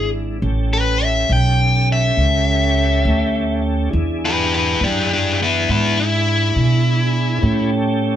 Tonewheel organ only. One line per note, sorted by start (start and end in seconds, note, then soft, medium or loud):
0.00 0.39 G#3 medium
0.00 0.39 D4 medium
0.00 0.39 E4 medium
0.42 3.89 C#4 soft
0.42 3.89 G4 medium
0.42 3.89 A4 medium
3.90 7.38 D4 soft
3.90 7.39 E4 soft
3.90 7.39 G#4 medium
7.42 8.16 C#4 soft
7.42 8.16 G4 soft
7.42 8.16 A4 medium